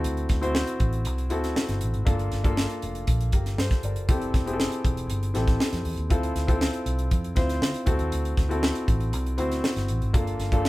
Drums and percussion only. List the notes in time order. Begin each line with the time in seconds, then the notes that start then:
0.04 closed hi-hat
0.17 closed hi-hat
0.29 kick, snare, closed hi-hat
0.43 closed hi-hat
0.55 snare
0.67 closed hi-hat
0.80 kick, closed hi-hat
0.93 closed hi-hat
1.05 closed hi-hat
1.18 closed hi-hat
1.30 closed hi-hat
1.44 snare, closed hi-hat
1.56 snare
1.69 snare, closed hi-hat
1.81 closed hi-hat
1.94 closed hi-hat
2.07 kick, closed hi-hat
2.19 closed hi-hat
2.32 snare, closed hi-hat
2.44 kick, closed hi-hat
2.57 snare
2.69 closed hi-hat
2.82 closed hi-hat
2.95 closed hi-hat
3.07 kick, closed hi-hat
3.21 closed hi-hat
3.32 kick, closed hi-hat
3.46 snare, closed hi-hat
3.58 snare
3.71 kick, snare, closed hi-hat
3.83 closed hi-hat
3.96 closed hi-hat
4.09 kick, closed hi-hat
4.22 closed hi-hat
4.34 kick, snare, closed hi-hat
4.47 closed hi-hat
4.60 snare
4.72 closed hi-hat
4.85 kick, closed hi-hat
4.97 closed hi-hat
5.10 closed hi-hat
5.23 closed hi-hat
5.35 snare, closed hi-hat
5.47 kick, snare, closed hi-hat
5.60 snare
5.73 snare, closed hi-hat
5.85 open hi-hat
5.98 closed hi-hat
6.10 kick, closed hi-hat
6.23 closed hi-hat
6.36 snare, closed hi-hat
6.48 kick, closed hi-hat
6.61 snare
6.73 closed hi-hat
6.86 closed hi-hat
6.99 closed hi-hat
7.11 kick, closed hi-hat
7.24 closed hi-hat
7.36 kick, snare, closed hi-hat
7.49 snare, closed hi-hat
7.62 snare
7.74 closed hi-hat
7.86 kick, closed hi-hat
7.99 closed hi-hat
8.12 closed hi-hat
8.25 closed hi-hat
8.37 kick, snare, closed hi-hat
8.51 closed hi-hat
8.63 snare
8.75 closed hi-hat
8.88 kick, closed hi-hat
9.00 closed hi-hat
9.13 closed hi-hat
9.26 closed hi-hat
9.38 closed hi-hat
9.51 snare, closed hi-hat
9.64 snare
9.77 snare, closed hi-hat
9.88 closed hi-hat
10.02 closed hi-hat
10.14 kick, closed hi-hat
10.27 closed hi-hat
10.40 snare, closed hi-hat
10.52 kick, closed hi-hat
10.65 snare